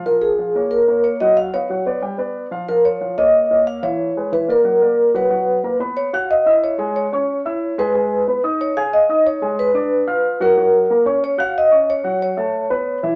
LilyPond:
<<
  \new Staff \with { instrumentName = "Vibraphone" } { \time 4/4 \key fis \major \tempo 4 = 182 bes'8 aes'4. ais'4 cis''8 dis''8 | eis''8 cis''4. r2 | ais'8 cis''4 dis''4. eis''8 cis''8~ | cis''4 b'8 ais'2 b'8~ |
b'4. r8 cis''8 eis''8 dis''4 | cis''4 cis''2~ cis''8 b'8~ | b'4. r8 cis''8 eis''8 dis''4 | cis''4 b'2~ b'8 ais'8~ |
ais'4. r8 cis''8 eis''8 dis''4 | cis''4 cis''2~ cis''8 r8 | }
  \new Staff \with { instrumentName = "Grand piano" } { \time 4/4 \key fis \major <f f' f''>4 <f f' f''>8 <bes bes' cis''>4 <ais ais' cis''>4 <fis fis' fis''>8~ | <fis fis' fis''>8 <b b' dis''>8 <fis fis' fis''>8 <b b' d''>8 <g g' g''>8 <b b' d''>4 <f f' f''>8 | <eis eis' eis''>4 <eis eis' eis''>8 <ais ais' cis''>4 <ais ais' cis''>4 <e e' e''>8~ | <e e' e''>8 <gis gis' b'>8 <e e' e''>8 <ais ais' d''>8 <fis fis' fis''>8 <ais ais' d''>4 <fis fis' fis''>8 |
<fis fis' fis''>4 <ais ais' ais''>8 <b b' b''>4 <fis' fis'' fis'''>4 <e' e'' e'''>8~ | <e' e'' e'''>8 <gis gis' gis''>4 <cis' cis'' cis'''>4 <e' e'' e'''>4 <gis gis' gis''>8 | <gis gis' gis''>4 <b b' b''>8 <dis' dis'' dis'''>4 <gis' gis'' gis'''>4 <dis' dis'' dis'''>8~ | <dis' dis'' dis'''>8 <gis gis' gis''>4 <d' d'' d'''>4 <eis' eis'' eis'''>4 <fis fis' fis''>8 |
<fis fis' fis''>4 <ais ais' ais''>8 <cis' cis'' cis'''>4 <fis' fis'' fis'''>4 <cis' cis'' cis'''>8~ | <cis' cis'' cis'''>8 <fis fis' fis''>4 <a a' a''>4 <b b' b''>4 <e e' e''>8 | }
>>